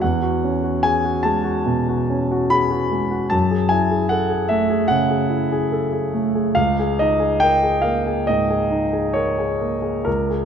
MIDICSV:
0, 0, Header, 1, 2, 480
1, 0, Start_track
1, 0, Tempo, 834492
1, 8, Time_signature, 4, 2, 24, 8
1, 1448, Tempo, 811908
1, 3848, Tempo, 853485
1, 5288, Tempo, 934579
1, 5962, End_track
2, 0, Start_track
2, 0, Title_t, "Grand piano"
2, 0, Program_c, 0, 0
2, 0, Control_c, 0, 64, 127
2, 9, Note_on_c, 0, 78, 55
2, 17, Control_c, 0, 64, 0
2, 21, Note_on_c, 0, 40, 36
2, 109, Control_c, 0, 64, 127
2, 129, Note_on_c, 0, 66, 32
2, 254, Note_on_c, 0, 61, 29
2, 318, Note_off_c, 0, 66, 0
2, 364, Note_on_c, 0, 66, 29
2, 441, Note_off_c, 0, 61, 0
2, 477, Note_on_c, 0, 80, 73
2, 484, Note_on_c, 0, 68, 30
2, 485, Note_off_c, 0, 78, 0
2, 557, Note_off_c, 0, 66, 0
2, 601, Note_on_c, 0, 66, 33
2, 605, Note_off_c, 0, 68, 0
2, 707, Note_on_c, 0, 81, 65
2, 718, Note_on_c, 0, 56, 29
2, 722, Note_off_c, 0, 80, 0
2, 797, Note_off_c, 0, 66, 0
2, 829, Note_on_c, 0, 66, 35
2, 916, Note_off_c, 0, 56, 0
2, 952, Note_off_c, 0, 40, 0
2, 955, Note_on_c, 0, 47, 35
2, 1032, Note_off_c, 0, 66, 0
2, 1087, Note_on_c, 0, 66, 34
2, 1154, Note_off_c, 0, 47, 0
2, 1207, Note_on_c, 0, 61, 31
2, 1280, Note_off_c, 0, 66, 0
2, 1331, Note_on_c, 0, 66, 35
2, 1399, Note_off_c, 0, 61, 0
2, 1437, Note_off_c, 0, 81, 0
2, 1439, Note_on_c, 0, 83, 71
2, 1448, Note_on_c, 0, 68, 26
2, 1521, Note_off_c, 0, 66, 0
2, 1561, Note_on_c, 0, 66, 35
2, 1569, Note_off_c, 0, 68, 0
2, 1683, Note_on_c, 0, 56, 27
2, 1758, Note_off_c, 0, 66, 0
2, 1798, Note_on_c, 0, 66, 33
2, 1879, Note_off_c, 0, 56, 0
2, 1909, Note_on_c, 0, 81, 64
2, 1916, Note_on_c, 0, 42, 39
2, 1924, Note_off_c, 0, 66, 0
2, 1926, Note_off_c, 0, 83, 0
2, 1939, Control_c, 0, 64, 0
2, 2035, Note_on_c, 0, 68, 34
2, 2042, Control_c, 0, 64, 127
2, 2140, Note_on_c, 0, 80, 63
2, 2152, Note_on_c, 0, 64, 31
2, 2158, Note_off_c, 0, 81, 0
2, 2233, Note_off_c, 0, 68, 0
2, 2272, Note_on_c, 0, 68, 32
2, 2350, Note_off_c, 0, 64, 0
2, 2378, Note_on_c, 0, 78, 66
2, 2390, Note_on_c, 0, 69, 27
2, 2391, Note_off_c, 0, 80, 0
2, 2468, Note_off_c, 0, 68, 0
2, 2502, Note_on_c, 0, 68, 31
2, 2515, Note_off_c, 0, 69, 0
2, 2612, Note_on_c, 0, 76, 63
2, 2621, Note_on_c, 0, 57, 32
2, 2627, Note_off_c, 0, 78, 0
2, 2700, Note_off_c, 0, 68, 0
2, 2737, Note_on_c, 0, 68, 38
2, 2820, Note_off_c, 0, 57, 0
2, 2843, Note_on_c, 0, 78, 72
2, 2846, Note_off_c, 0, 42, 0
2, 2859, Note_on_c, 0, 49, 33
2, 2863, Note_off_c, 0, 76, 0
2, 2938, Note_off_c, 0, 68, 0
2, 2978, Note_on_c, 0, 68, 36
2, 3059, Note_off_c, 0, 49, 0
2, 3089, Note_on_c, 0, 64, 27
2, 3179, Note_off_c, 0, 68, 0
2, 3225, Note_on_c, 0, 68, 33
2, 3294, Note_off_c, 0, 64, 0
2, 3342, Note_on_c, 0, 69, 29
2, 3422, Note_off_c, 0, 68, 0
2, 3463, Note_on_c, 0, 68, 29
2, 3469, Note_off_c, 0, 69, 0
2, 3581, Note_off_c, 0, 78, 0
2, 3589, Note_on_c, 0, 57, 29
2, 3665, Note_off_c, 0, 68, 0
2, 3714, Note_on_c, 0, 68, 31
2, 3791, Note_off_c, 0, 57, 0
2, 3831, Note_on_c, 0, 77, 66
2, 3839, Note_on_c, 0, 37, 40
2, 3842, Note_off_c, 0, 68, 0
2, 3857, Control_c, 0, 64, 0
2, 3940, Control_c, 0, 64, 127
2, 3970, Note_on_c, 0, 68, 32
2, 4077, Note_off_c, 0, 77, 0
2, 4082, Note_on_c, 0, 75, 62
2, 4089, Note_on_c, 0, 63, 29
2, 4158, Note_off_c, 0, 68, 0
2, 4198, Note_on_c, 0, 68, 33
2, 4276, Note_off_c, 0, 63, 0
2, 4311, Note_on_c, 0, 79, 79
2, 4319, Note_off_c, 0, 75, 0
2, 4322, Note_on_c, 0, 70, 28
2, 4388, Note_off_c, 0, 68, 0
2, 4439, Note_off_c, 0, 70, 0
2, 4441, Note_on_c, 0, 68, 32
2, 4545, Note_on_c, 0, 77, 53
2, 4552, Note_off_c, 0, 79, 0
2, 4554, Note_on_c, 0, 58, 28
2, 4631, Note_off_c, 0, 68, 0
2, 4683, Note_on_c, 0, 68, 31
2, 4749, Note_off_c, 0, 58, 0
2, 4774, Note_off_c, 0, 37, 0
2, 4793, Note_off_c, 0, 77, 0
2, 4801, Note_on_c, 0, 75, 62
2, 4810, Note_on_c, 0, 44, 31
2, 4875, Note_off_c, 0, 68, 0
2, 4930, Note_on_c, 0, 68, 31
2, 4999, Note_off_c, 0, 44, 0
2, 5047, Note_on_c, 0, 63, 25
2, 5120, Note_off_c, 0, 68, 0
2, 5170, Note_on_c, 0, 68, 32
2, 5239, Note_off_c, 0, 63, 0
2, 5286, Note_on_c, 0, 73, 55
2, 5287, Note_off_c, 0, 75, 0
2, 5296, Note_on_c, 0, 70, 24
2, 5357, Note_off_c, 0, 68, 0
2, 5405, Note_off_c, 0, 70, 0
2, 5415, Note_on_c, 0, 68, 24
2, 5526, Note_on_c, 0, 58, 24
2, 5597, Note_off_c, 0, 68, 0
2, 5639, Note_on_c, 0, 68, 24
2, 5716, Note_off_c, 0, 58, 0
2, 5755, Note_on_c, 0, 70, 50
2, 5761, Note_off_c, 0, 68, 0
2, 5761, Note_off_c, 0, 73, 0
2, 5766, Note_on_c, 0, 37, 30
2, 5773, Control_c, 0, 64, 0
2, 5880, Control_c, 0, 64, 127
2, 5888, Note_on_c, 0, 68, 27
2, 5962, Note_off_c, 0, 37, 0
2, 5962, Note_off_c, 0, 68, 0
2, 5962, Note_off_c, 0, 70, 0
2, 5962, End_track
0, 0, End_of_file